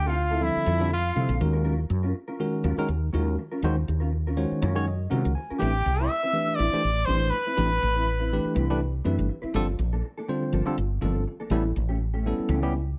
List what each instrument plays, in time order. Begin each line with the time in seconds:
Already playing: fretless electric bass D2, flute G5
0.06 clean electric guitar C4 E4 A4, trumpet F4, flute F5
0.17 muted clean electric guitar stroke
0.31 clean electric guitar C4 E4 A4
0.41 tine electric piano D3 F3 G3 C4 A4, trumpet E4
0.45 flute E5
0.56 muted fretless electric bass stroke, muted clean electric guitar stroke
0.66 fretless electric bass F2, clean electric guitar F3 C4 E4 A4
0.80 tine electric piano D3 G3 C4 F4 A4, muted clean electric guitar stroke
0.91 tine electric piano F4 G4, trumpet F4, flute F5, muted clean electric guitar stroke
1.15 fretless electric bass C3, tine electric piano D3 G3 C4 F4 A4, clean electric guitar F3 C4 E4 A4
1.29 fretless electric bass A#1, muted clean electric guitar stroke
1.40 fretless electric bass D#2, tine electric piano D#3 G#3 C#4 F#4 A#4, muted clean electric guitar stroke
1.53 clean electric guitar C#4 F4 A#4
1.64 clean electric guitar F#3 C#4 F4 A#4
1.78 tine electric piano F#4 A#4, muted clean electric guitar stroke
1.89 fretless electric bass F#2, muted clean electric guitar stroke
2.03 clean electric guitar C#4 F4 A#4
2.14 muted clean electric guitar stroke
2.28 clean electric guitar C#4 F4 A#4
2.40 tine electric piano D#3 G#3 C#4 F#4 A#4
2.52 muted clean electric guitar stroke
2.64 fretless electric bass D#2, clean electric guitar F#3 C#4 F4 A#4
2.77 tine electric piano D#3 G#3 C#4 F#4 A#4, muted fretless electric bass stroke, muted clean electric guitar stroke
2.88 fretless electric bass D#2, tine electric piano F#4 C#5, muted clean electric guitar stroke
3.13 fretless electric bass D#2, tine electric piano D#3 G#3 C#4 F#4 A#4, clean electric guitar F#3 C#4 F4 A#4
3.27 muted clean electric guitar stroke
3.38 tine electric piano F#4 A#4, muted clean electric guitar stroke
3.52 clean electric guitar C#4 F4 A#4
3.62 fretless electric bass D#2, tine electric piano D#3 G#3 C#4 F#4 C5, clean electric guitar F#3 C#4 F4 A#4
3.78 tine electric piano F#4 C5
3.88 fretless electric bass D#2, muted clean electric guitar stroke
4.00 clean electric guitar C#4 F4 A#4
4.12 muted clean electric guitar stroke
4.27 clean electric guitar C#4 F4 A#4
4.37 tine electric piano D#3 G#3 C#4 F#4 C5 C#5
4.51 muted fretless electric bass stroke, muted clean electric guitar stroke
4.62 fretless electric bass F#2, clean electric guitar F#3 C#4 F4 A#4, tine electric piano C#5
4.75 tine electric piano D#3 G#3 C#4 F#4 C#5, muted clean electric guitar stroke
4.87 tine electric piano F#4 C#5 D#5, muted clean electric guitar stroke
5.10 fretless electric bass C3, tine electric piano D#3 G#3 C#4 F#4 A#4 F#5, clean electric guitar F#3 C#4 F4 A#4
5.25 fretless electric bass C#2, muted clean electric guitar stroke
5.35 tine electric piano F#4 C5 G#5, muted clean electric guitar stroke
5.50 clean electric guitar C#4 F4 A#4, muted fretless electric bass stroke
5.59 fretless electric bass A1, tine electric piano E3 A3 D4 G4 B4, clean electric guitar G3 C4 E4 B4, trumpet G4, flute G5
5.75 muted clean electric guitar stroke
5.86 fretless electric bass C2, muted clean electric guitar stroke
6.00 clean electric guitar C4 E4 B4
6.07 trumpet E5, flute E6, muted clean electric guitar stroke
6.23 clean electric guitar C4 E4 B4
6.33 tine electric piano E3 A3 D4 G4 B4
6.48 muted clean electric guitar stroke
6.55 fretless electric bass A1, clean electric guitar G3 E4, trumpet D5, flute D6
6.60 clean electric guitar C4 B4
6.73 tine electric piano E3 A3 D4 G4 C5, muted clean electric guitar stroke
6.84 fretless electric bass A1, tine electric piano G4 B4
7.05 fretless electric bass A1, tine electric piano E3 A3 D4 G4 B4, clean electric guitar G3 C4 E4 B4, trumpet C5, flute C6
7.21 muted clean electric guitar stroke
7.30 trumpet B4, flute B5, muted clean electric guitar stroke
7.46 clean electric guitar C4 E4 B4
7.57 fretless electric bass A1, tine electric piano E3 A3 D4 G4 B4, clean electric guitar G3 C4 E4
7.71 tine electric piano G4 A4, muted clean electric guitar stroke
7.82 fretless electric bass A1, muted clean electric guitar stroke
7.95 clean electric guitar C4 E4 B4
8.06 muted clean electric guitar stroke
8.19 clean electric guitar C4 E4 B4
8.32 tine electric piano E3 A3 D4 G4 B4
8.45 muted clean electric guitar stroke, muted fretless electric bass stroke
8.55 fretless electric bass C2, clean electric guitar G3 C4 E4 B4
8.69 tine electric piano E3 A3 D4 G4 B4, muted clean electric guitar stroke
8.80 tine electric piano G4 B4, muted clean electric guitar stroke
9.04 fretless electric bass F#2, tine electric piano E3 A3 D4 G4 B4, clean electric guitar G3 C4 E4 B4
9.18 fretless electric bass G1, muted clean electric guitar stroke
9.29 tine electric piano G4 B4, muted clean electric guitar stroke
9.42 clean electric guitar C4 E4 B4, muted fretless electric bass stroke
9.54 fretless electric bass G1, tine electric piano D3 G3 C4 F4 A4, clean electric guitar F3 A#3 D4 A4
9.68 tine electric piano F4 C5, muted clean electric guitar stroke
9.79 fretless electric bass A#1, muted clean electric guitar stroke
9.93 clean electric guitar A#3 D4 A4
10.05 muted clean electric guitar stroke
10.18 clean electric guitar A#3 D4 A4
10.28 tine electric piano D3 G3 C4 F4 C5
10.42 muted clean electric guitar stroke
10.53 fretless electric bass G1, clean electric guitar F3 A#3 D4 A4
10.65 tine electric piano D3 G3 C4 F4 A4, muted fretless electric bass stroke, muted clean electric guitar stroke
10.78 fretless electric bass G1, tine electric piano F4 G4, muted clean electric guitar stroke
11.01 fretless electric bass G1, tine electric piano D3 G3 C4 F4 A4, clean electric guitar F3 A#3 D4 A4
11.16 muted clean electric guitar stroke
11.27 tine electric piano F4 A4, muted clean electric guitar stroke
11.40 clean electric guitar A#3 D4 A4
11.50 fretless electric bass A1, clean electric guitar E3 A3 C#4 G4, tine electric piano G3 B3 C#4 E4 A4
11.64 tine electric piano E4 A4, muted clean electric guitar stroke
11.76 fretless electric bass A1, muted clean electric guitar stroke
11.89 clean electric guitar A3 C#4 G4
12.00 muted clean electric guitar stroke
12.14 clean electric guitar A3 C#4 G4
12.26 tine electric piano G3 B3 C#4 E4 A4
12.38 muted clean electric guitar stroke, muted fretless electric bass stroke
12.49 fretless electric bass C#2, clean electric guitar E3 A3 C#4 G4
12.62 tine electric piano G3 B3 C#4 E4 G4, muted clean electric guitar stroke
12.74 tine electric piano E4 B4, muted clean electric guitar stroke